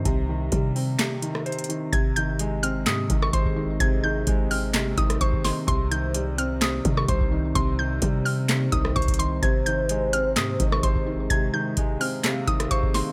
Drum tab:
HH |x-------x---o---x---x---xxxxx---|x---x---x---x---x---x---x-------|x-------x---o---x---x-x-x---o---|x---x---x---x---x---x---x-------|
CP |----------------x---------------|----------------x---------------|----------------x---------------|----------------x---------------|
SD |----------------o-----r---------|----------------o-----r---------|----------------o-----r-----o---|----------------o-----r---------|
BD |o-------o-----------------------|o-------------------o---o-o-----|o-------o-----------o---o-o-----|o-------------------o---o-o-----|

HH |x-------x---o---x---x---xxxxx---|x---x---x---x---x---x---x-------|x-------x---o---x---x-x-x---o---|
CP |----------------x---------------|----------------x---------------|----------------x---------------|
SD |----------------o-----r---------|----------------o-----r---------|----------------o-----r-----o---|
BD |o-------o-----------o---o-o-----|o-------------------o---o-o-----|o-------o-----------o---o-o-----|